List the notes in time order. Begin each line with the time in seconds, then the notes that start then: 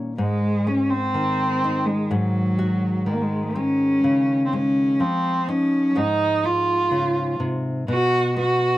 Already playing: A#2 D#3 A#3 C#4 G4
0.18 G#2 G#3
0.67 G#3 C#4
0.90 C4
1.14 D#3
1.64 D#4
1.86 G#3
2.11 G#2 F#3 G#3
2.59 F#4
3.06 D#3 G#3
3.13 A#3
3.22 G#3
3.56 G#3 C#4
4.04 C#3
4.46 C4
4.53 G#3 C#4
5.00 F3 C4
5.48 C#4 D#4
5.95 G#2 G#3 D#4
6.44 D#4 F4
6.91 C#3
7.40 C3
7.88 B2 F#4
8.37 B3 F#4